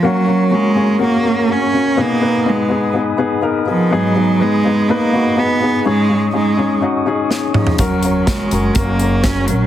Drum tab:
HH |----------------|----------------|----------------|----------------|
SD |----------------|----------------|----------------|------------o---|
T2 |----------------|----------------|----------------|--------------o-|
FT |----------------|----------------|----------------|---------------o|
BD |----------------|----------------|----------------|----------------|

HH |x-x-x-x-x-x-x-x-|
SD |----o-------o---|
T2 |----------------|
FT |----------------|
BD |o---o---o---o---|